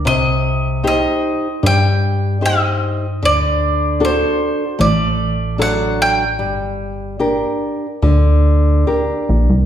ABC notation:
X:1
M:4/4
L:1/16
Q:1/4=75
K:Gm
V:1 name="Mandolin"
e4 e4 g4 e4 | d4 c4 d4 ^f2 g2- | g12 z4 |]
V:2 name="Nylon-string guitar"
C,4 [EGc]4 G,4 [EGc]4 | D,4 [D^FA]4 A,4 [^F,DA]4 | G,4 [DGB]4 D,4 [DGB]4 |]
V:3 name="Analog synth bass" clef=bass
C,,8 G,,8 | D,,8 A,,,8 | G,,,8 D,,6 B,,, C,, |]